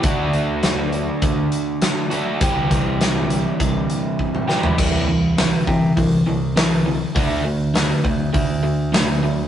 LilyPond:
<<
  \new Staff \with { instrumentName = "Overdriven electric guitar" } { \clef bass \time 4/4 \key c \lydian \tempo 4 = 101 <d a d' fis'>2.~ <d a d' fis'>8 <d a d' fis'>8 | <c e g c' g'>2.~ <c e g c' g'>8 <c e g c' g'>8 | <c e g>8 <c e>8 <c e>8 <c e>8 <c e>8 <c e>8 <c e>8 <c e>8 | <d a d'>8 <d a>8 <d a>8 <d a>8 <d a>8 <d a>8 <d a>8 <d a>8 | }
  \new Staff \with { instrumentName = "Picked electric bass" } { \clef bass \time 4/4 \key c \lydian d,8 d,4. d,8 r4. | c,8 c,4. c,8 r4. | c,4. c8 c,8 c,4. | d,4. d,8 d,2 | }
  \new DrumStaff \with { instrumentName = "Drums" } \drummode { \time 4/4 <hh bd>8 hh8 <hh sn>8 hh8 <hh bd>8 hh8 <hh sn>8 hh8 | <hh bd>8 <hh bd>8 <hh sn>8 hh8 <hh bd>8 hh8 bd16 toml16 sn16 tomfh16 | <cymc bd>4 <hho sn>8 bd8 <hho bd>4 <hho sn>4 | <hho bd>4 <hho sn>8 bd8 <hho bd>4 <hho sn>4 | }
>>